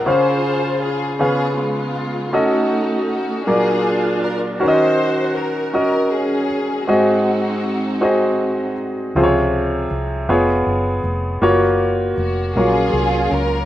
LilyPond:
<<
  \new Staff \with { instrumentName = "Grand piano" } { \time 6/8 \key des \major \tempo 4. = 53 <des' aes' c'' f''>4 r8 <des' aes' ces'' f''>4 r8 | <des' ges' a' ees''>4 r8 <ges bes aes' d''>4 r8 | <des' ges' bes' des'' ees''>4 r8 <des' ges' bes' ees''>4 r8 | <c' ges' aes' ees''>4 r8 <c' ges' aes' ees''>4 r8 |
<c f' aes' c'' des''>4 r8 <ces' f' aes' des''>4 r8 | <bes f' ges' des''>4 r8 <ges bes f' des''>4 r8 | }
  \new Staff \with { instrumentName = "Grand piano" } { \clef bass \time 6/8 \key des \major des4. des4. | r4. bes,4. | ees4. r4. | aes,4. r4. |
f4. r4. | r2. | }
  \new Staff \with { instrumentName = "String section" } { \time 6/8 \key des \major << { c''4 aes'8 aes'8 f'4 | ges'4 ges'8 aes'4 bes'8 | c''4 bes'8 bes'8 aes'4 | ges'2~ ges'8 r8 |
r2. | r4 ges'8 aes'4 bes'8 | } \\ { <f' aes'>4. <ces' f'>8 <aes ces'>4 | <a ees'>4. <d' f'>4. | ges'4. r8 des'4 | <c' ees'>2~ <c' ees'>8 r8 |
r2. | r4. <des' f'>4. | } >> }
  \new Staff \with { instrumentName = "Fingered electric bass" } { \clef bass \time 6/8 \key des \major r2. | r2. | r2. | r2. |
des,4 c,8 f,,8 ges,,8 f,,8 | ges,,4 f,,8 bes,,8 c,8 des,8 | }
>>